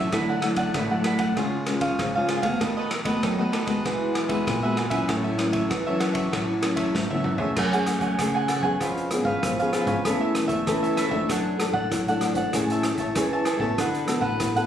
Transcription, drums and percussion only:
0.12 kick medium
0.12 cross-stick medium
0.12 ride soft
0.42 cross-stick medium
0.42 ride soft
0.56 kick medium
0.56 ride soft
0.74 kick medium
0.74 cross-stick medium
0.74 ride soft
1.04 cross-stick medium
1.04 ride soft
1.19 kick medium
1.19 ride soft
1.37 kick medium
1.37 cross-stick medium
1.37 ride soft
1.66 cross-stick medium
1.66 ride medium
1.81 kick medium
1.81 ride soft
1.99 kick medium
1.99 cross-stick medium
1.99 ride medium
2.29 cross-stick medium
2.29 ride soft
2.43 kick medium
2.43 ride medium
2.61 kick medium
2.61 cross-stick medium
2.61 ride medium
2.91 cross-stick medium
2.91 ride soft
3.05 kick medium
3.05 ride soft
3.23 kick medium
3.23 cross-stick medium
3.23 ride soft
3.53 cross-stick medium
3.53 ride soft
3.67 kick medium
3.67 ride soft
3.85 kick medium
3.85 cross-stick medium
3.85 ride soft
4.15 cross-stick medium
4.15 ride soft
4.29 kick medium
4.29 ride soft
4.47 kick medium
4.47 cross-stick medium
4.47 ride soft
4.77 cross-stick medium
4.77 ride soft
4.91 kick medium
4.91 ride soft
5.09 kick medium
5.09 cross-stick medium
5.09 ride soft
5.39 cross-stick medium
5.39 ride soft
5.53 kick medium
5.53 ride soft
5.71 kick medium
5.71 cross-stick medium
5.71 ride soft
6.00 cross-stick medium
6.00 ride soft
6.15 kick medium
6.15 ride soft
6.33 kick medium
6.33 cross-stick medium
6.33 ride soft
6.63 cross-stick medium
6.63 ride soft
6.77 kick medium
6.77 ride soft
6.95 kick medium
6.95 snare soft
7.11 high tom soft
7.24 mid tom medium
7.38 floor tom medium
7.57 kick medium
7.57 cross-stick medium
7.57 crash medium
7.73 closed hi-hat soft
7.86 cross-stick medium
7.86 closed hi-hat medium
8.01 kick medium
8.01 closed hi-hat soft
8.19 kick medium
8.19 cross-stick medium
8.19 closed hi-hat medium
8.48 cross-stick medium
8.48 closed hi-hat soft
8.63 kick medium
8.81 kick medium
8.81 cross-stick medium
8.81 closed hi-hat medium
8.97 closed hi-hat soft
9.11 cross-stick medium
9.11 closed hi-hat soft
9.25 kick medium
9.43 kick loud
9.43 cross-stick medium
9.43 closed hi-hat medium
9.60 closed hi-hat soft
9.73 cross-stick medium
9.73 closed hi-hat soft
9.87 kick medium
9.87 closed hi-hat soft
10.05 kick medium
10.05 cross-stick medium
10.05 closed hi-hat medium
10.35 cross-stick medium
10.35 closed hi-hat soft
10.49 kick medium
10.49 closed hi-hat soft
10.67 kick medium
10.67 cross-stick medium
10.67 closed hi-hat medium
10.84 closed hi-hat soft
10.97 cross-stick medium
10.97 closed hi-hat soft
11.11 kick medium
11.29 kick medium
11.29 cross-stick medium
11.29 closed hi-hat medium
11.60 cross-stick medium
11.60 closed hi-hat medium
11.74 kick medium
11.92 kick loud
11.92 cross-stick medium
11.92 closed hi-hat medium
12.08 closed hi-hat soft
12.21 cross-stick medium
12.21 closed hi-hat medium
12.35 kick medium
12.35 closed hi-hat soft
12.53 kick medium
12.53 cross-stick medium
12.53 closed hi-hat medium
12.70 closed hi-hat soft
12.83 cross-stick medium
12.83 closed hi-hat medium
12.98 kick medium
12.98 closed hi-hat soft
13.15 kick medium
13.15 cross-stick medium
13.15 closed hi-hat medium
13.45 cross-stick medium
13.45 closed hi-hat soft
13.60 kick medium
13.78 kick medium
13.78 cross-stick medium
13.78 closed hi-hat medium
13.94 closed hi-hat soft
14.08 cross-stick medium
14.08 closed hi-hat medium
14.22 kick medium
14.40 kick medium
14.40 cross-stick medium
14.40 closed hi-hat medium
14.56 closed hi-hat soft

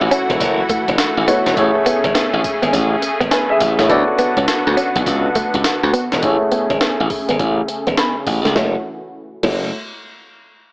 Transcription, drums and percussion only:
0.11 closed hi-hat medium
0.11 tambourine medium
0.30 kick medium
0.30 closed hi-hat medium
0.40 kick medium
0.40 closed hi-hat medium
0.40 tambourine medium
0.69 kick medium
0.69 closed hi-hat medium
0.69 tambourine medium
0.88 kick medium
0.88 closed hi-hat medium
0.98 snare loud
0.98 closed hi-hat medium
0.98 tambourine medium
1.28 closed hi-hat medium
1.28 tambourine medium
1.46 snare medium
1.46 closed hi-hat medium
1.57 kick loud
1.57 closed hi-hat medium
1.86 closed hi-hat medium
1.86 tambourine medium
2.04 kick loud
2.04 closed hi-hat medium
2.15 snare loud
2.15 closed hi-hat medium
2.15 tambourine medium
2.44 kick loud
2.44 closed hi-hat medium
2.44 tambourine medium
2.63 closed hi-hat medium
2.73 kick medium
2.73 closed hi-hat medium
2.73 tambourine medium
3.02 closed hi-hat medium
3.02 tambourine medium
3.21 kick medium
3.21 closed hi-hat medium
3.31 snare loud
3.31 closed hi-hat medium
3.31 tambourine medium
3.60 kick medium
3.60 closed hi-hat medium
3.60 tambourine medium
3.79 snare medium
3.79 closed hi-hat medium
3.90 kick loud
3.90 closed hi-hat medium
4.18 closed hi-hat medium
4.18 tambourine medium
4.37 kick loud
4.37 closed hi-hat medium
4.48 snare loud
4.48 closed hi-hat medium
4.48 tambourine medium
4.77 closed hi-hat medium
4.77 tambourine medium
4.96 kick medium
4.96 closed hi-hat medium
5.06 kick loud
5.06 closed hi-hat medium
5.06 tambourine medium
5.35 kick medium
5.35 closed hi-hat medium
5.35 tambourine medium
5.54 kick medium
5.54 closed hi-hat medium
5.64 snare loud
5.64 closed hi-hat medium
5.64 tambourine medium
5.94 closed hi-hat medium
5.94 tambourine medium
6.12 snare medium
6.12 closed hi-hat soft
6.23 kick loud
6.23 closed hi-hat medium
6.52 closed hi-hat medium
6.70 kick loud
6.70 closed hi-hat medium
6.81 snare loud
6.81 closed hi-hat medium
7.10 kick medium
7.10 open hi-hat medium
7.29 closed hi-hat medium
7.39 kick medium
7.39 closed hi-hat medium
7.68 closed hi-hat medium
7.87 kick medium
7.87 closed hi-hat soft
7.97 snare loud
7.97 closed hi-hat medium
8.27 kick medium
8.27 open hi-hat medium
8.45 snare medium
8.45 closed hi-hat soft
8.56 kick loud
8.56 snare medium
9.43 kick loud
9.43 crash medium

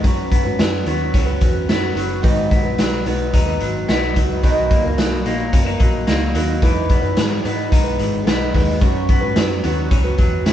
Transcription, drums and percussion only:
0.04 kick medium
0.04 closed hi-hat medium
0.32 kick medium
0.32 closed hi-hat medium
0.59 snare loud
0.59 closed hi-hat medium
0.86 closed hi-hat medium
1.14 kick medium
1.14 closed hi-hat medium
1.41 kick medium
1.41 closed hi-hat medium
1.69 snare medium
1.69 closed hi-hat medium
1.97 closed hi-hat medium
2.24 kick loud
2.24 closed hi-hat medium
2.51 kick medium
2.51 closed hi-hat medium
2.78 snare medium
2.78 closed hi-hat medium
3.06 closed hi-hat medium
3.33 kick medium
3.33 closed hi-hat medium
3.60 closed hi-hat medium
3.89 snare medium
3.89 closed hi-hat medium
4.16 kick medium
4.16 closed hi-hat medium
4.43 kick loud
4.43 closed hi-hat medium
4.71 kick medium
4.71 closed hi-hat medium
4.98 snare medium
4.98 closed hi-hat medium
5.26 closed hi-hat medium
5.53 kick medium
5.53 closed hi-hat medium
5.80 kick loud
5.80 closed hi-hat medium
6.07 snare medium
6.07 closed hi-hat medium
6.35 closed hi-hat medium
6.62 kick loud
6.62 closed hi-hat medium
6.89 kick medium
6.89 closed hi-hat medium
7.17 snare medium
7.17 closed hi-hat medium
7.45 closed hi-hat medium
7.72 kick loud
7.72 closed hi-hat medium
7.99 closed hi-hat medium
8.27 snare medium
8.27 closed hi-hat medium
8.54 kick medium
8.54 open hi-hat medium
8.81 kick medium
8.81 closed hi-hat medium
9.09 kick medium
9.09 closed hi-hat medium
9.36 snare loud
9.36 closed hi-hat medium
9.64 closed hi-hat medium
9.91 kick loud
9.91 closed hi-hat medium
10.18 kick medium
10.18 closed hi-hat medium
10.46 snare medium
10.46 closed hi-hat medium

